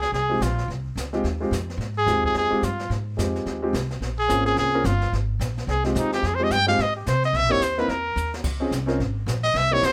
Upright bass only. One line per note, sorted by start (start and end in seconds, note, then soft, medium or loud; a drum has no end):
0.00 0.11 C#2 medium
0.12 0.39 C2 medium
0.40 0.67 A#1 medium
0.68 0.95 C2 medium
0.96 1.23 C#2 medium
1.24 1.50 D#2 medium
1.51 1.77 F2 medium
1.77 2.05 G#2 medium
2.06 2.34 D#2 medium
2.35 2.50 F2 medium
2.51 muted upright bass stroke soft
2.62 2.89 G2 medium
2.90 3.17 G#2 medium
3.18 3.45 F2 medium
3.46 3.72 D#2 medium
3.73 4.00 C2 medium
4.00 4.28 A#1 medium
4.29 4.56 G#1 medium
4.57 4.84 C2 medium
4.84 5.11 G1 loud
5.12 5.39 G#1 medium
5.39 5.67 A#1 medium
5.67 5.94 C2 medium
5.95 6.22 D#2 loud
6.23 6.50 F2 medium
6.51 6.77 G2 medium
6.78 7.05 G#2 medium
7.07 7.33 C3 loud
7.33 7.43 C2 medium
7.43 7.51 A#1 medium
7.52 7.60 G1 medium
7.61 7.88 D#2 medium
7.88 8.15 E2 medium
8.16 8.43 D#2 loud
8.44 8.71 C#2 medium
8.71 8.98 C2 medium
8.98 9.26 G#1 medium
9.26 9.53 A#1 loud
9.54 9.81 C2 medium
9.82 9.93 C#2 loud